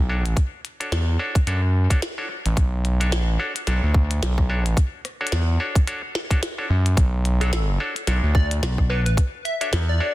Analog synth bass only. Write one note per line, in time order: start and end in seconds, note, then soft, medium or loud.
0.00 0.35 B1 loud
0.92 1.18 E2 medium
1.47 1.88 F#2 medium
2.46 2.55 A1 medium
2.57 3.14 B1 loud
3.14 3.38 A#1 loud
3.67 3.81 B1 loud
3.83 4.21 D2 loud
4.22 4.75 B1 loud
5.33 5.58 E2 medium
6.70 6.96 F#2 medium
6.97 7.78 B1 loud
8.08 8.21 B1 medium
8.23 8.61 D2 loud